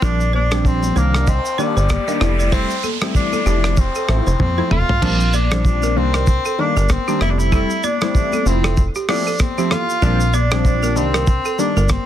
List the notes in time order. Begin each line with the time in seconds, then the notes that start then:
0.02 A#1 F3 G3 C4 D4 A#4, kick, noise sweep, shaker
0.20 shaker
0.33 D4 C5, high conga
0.51 F3 G3 C4 D4 D5, cross-stick, shaker
0.65 C4, kick, shaker
0.83 high conga, shaker
0.96 C2 D#3 G3 A#3 D4 C5, low conga, shaker
1.14 cross-stick, shaker
1.27 C4 D#5, kick, shaker
1.45 shaker
1.58 D#3 G3 A#3 D4 D5, shaker
1.77 G1 C5, shaker
1.89 kick, cross-stick, high conga, shaker
2.07 D#3 G3 A#3 D4 D#5, shaker
2.20 F1 G3 A3 C4 E4, cross-stick, high conga, low conga, shaker
2.39 D5, shaker
2.52 G3 A3 C4 E4 C5, kick, shaker
2.70 shaker
2.83 A4, high conga, shaker
3.01 G3 A3 C4 E4, cross-stick, shaker
3.15 D4, kick, low conga, shaker
3.33 A4, high conga, shaker
3.46 F1 F3 A3 C4 E4 G4, low conga, shaker
3.64 cross-stick, shaker
3.77 C4, kick, shaker
3.95 A4, shaker
4.08 A1 F3 A3 C4 E4, cross-stick
4.27 F1 C5, shaker
4.39 F2 C4, kick, high tom, high conga
4.58 F3 A3 C4 E4 C5
4.71 F1 F4 A4, mid tom, high conga, low conga
4.89 floor tom
5.02 A#1 F3 G3 C4 D4 A#4, kick, crash
5.20 shaker
5.33 D4 D5, high conga, shaker
5.52 F3 G3 C4 D4 C5, cross-stick, shaker
5.65 kick, low conga, shaker
5.83 A#4, high conga, shaker
5.96 C2 D#3 G3 A#3 C4 D4, low conga
6.14 A#4, cross-stick, shaker
6.27 kick, shaker
6.45 A4, shaker
6.58 D#3 G3 A#3 D4, high conga
6.76 G1 A#4, shaker
6.89 C4, kick, cross-stick, high conga, shaker
7.08 D#3 G3 A#3 D4 G4, shaker
7.21 F1 G3 A3 C4 E4 G4, cross-stick, high conga, low conga, shaker
7.30 D4
7.39 E4, shaker
7.52 G3 A3 C4 E4 A4, kick, shaker
7.70 shaker
7.83 D4 D5, high conga, shaker
8.02 G3 A3 C4 E4 C5, cross-stick, shaker
8.15 kick, low conga, shaker
8.32 A4, high conga, shaker
8.46 F1 F3 A3 C4 E4, low conga, shaker
8.64 A4, cross-stick, shaker
8.77 kick, shaker
8.95 G4, shaker
9.08 F3 A3 C4 D4 E4, cross-stick, open hi-hat, high conga
9.27 A4, shaker
9.39 C4, kick, cross-stick, hi-hat pedal, high conga, shaker
9.58 F3 A3 C4 E4 G4, shaker
9.71 F4 A4, cross-stick, high conga, low conga, shaker
9.90 shaker
10.02 A#1 F3 G3 C4 D4 A#4, kick, shaker
10.20 shaker
10.33 D4 D5, high conga, shaker
10.52 F3 G3 C4 D4 C5, cross-stick, shaker
10.65 kick, low conga, shaker
10.83 A#4, high conga, shaker
10.96 C2 D#3 G3 A#3 C4 D4, low conga, shaker
11.14 A#4, cross-stick, shaker
11.27 kick, shaker
11.45 A4, shaker
11.58 D#3 G3 A#3 D4, high conga, shaker
11.77 G1 A#4, shaker
11.89 C4, kick, cross-stick, high conga, shaker